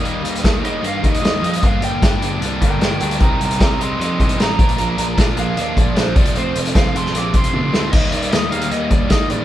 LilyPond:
<<
  \new Staff \with { instrumentName = "Lead electric guitar" } { \time 4/4 \key ees \lydian \tempo 4 = 152 r4. ees''8 f''8 ees''4. | f''8 g''8 g''8 r4 <bes' g''>8 <bes' g''>8 <bes' g''>8 | <g'' bes''>8 <g'' bes''>8 <g'' bes''>8 <ees'' c'''>8 <ees'' c'''>8 <ees'' c'''>8 bes''4~ | bes''4 r8 f''4 d''8 c''8 d''8 |
c''8 r8 f''8 c'''8 d'''8 c'''4. | ees''8 d''8 ees''8 f''8 ees''8 d''8 ees''8 d''8 | }
  \new Staff \with { instrumentName = "Distorted electric guitar" } { \clef bass \time 4/4 \key ees \lydian <ees g bes ees'>4 <ees g bes ees'>8 <ees g bes ees'>8 <ees g bes ees'>4 <ees g bes ees'>8 <ees g bes ees'>8 | <g, d g bes d'>4 <g, d g bes d'>8 <g, d g bes d'>8 <g, d g bes d'>4 <g, d g bes d'>8 <g, d g bes d'>8 | <c g c' ees'>4 <c g c' ees'>8 <c g c' ees'>8 <c g c' ees'>4 <c g c' ees'>8 <bes, f bes d'>8 | <bes, f bes d'>4 <bes, f bes d'>8 <bes, f bes d'>8 <bes, f bes d'>4 <bes, f bes d'>8 <f, c f a c'>8 |
<f, c f a c'>4 <f, c f a c'>8 <f, c f a c'>8 <f, c f a c'>4 <f, c f a c'>8 <f, c f a c'>8 | <ees g bes ees'>4. <ees g bes ees'>4. <ees g bes ees'>4 | }
  \new Staff \with { instrumentName = "Picked electric bass" } { \clef bass \time 4/4 \key ees \lydian ees,8 ees,8 ees,8 ees,8 g,8 ees,8 ees,8 f,8 | g,,8 g,,8 g,,8 g,,8 c,8 g,,8 g,,8 d,8 | c,8 c,8 c,8 c,8 f,8 c,8 a,,8 bes,,8 | bes,,8 bes,,8 bes,,8 bes,,8 ees,8 bes,,8 bes,,8 r8 |
f,,8 f,,8 f,,8 f,,8 bes,,8 f,,8 f,,8 d,8 | ees,8 ees,8 ees,8 ees,8 ees,8 ees,8 ees,8 a,,8 | }
  \new DrumStaff \with { instrumentName = "Drums" } \drummode { \time 4/4 hh8 hh16 hh16 <hh bd sn>8 hh8 hh8 <hh bd>16 hh16 <hh sn>8 hh16 hh16 | <hh bd>8 hh8 <hh bd sn>8 hh8 hh8 <hh bd>8 <hh sn>8 hh16 hh16 | <hh bd>8 hh16 hh16 <hh bd sn>8 hh8 hh8 <hh bd>16 hh16 <hh sn>8 <hh bd>16 hh16 | hh8 hh8 <hh bd sn>8 hh8 hh8 <hh bd>8 <hh sn>8 <hh bd>16 hh16 |
hh8 hh16 hh16 <hh bd sn>8 hh16 sn16 hh8 <hh bd>16 hh16 tommh8 sn8 | <cymc bd>8 hh16 hh16 <hh sn>8 hh16 hh16 hh8 <hh bd>8 <hh bd sn>8 hh8 | }
>>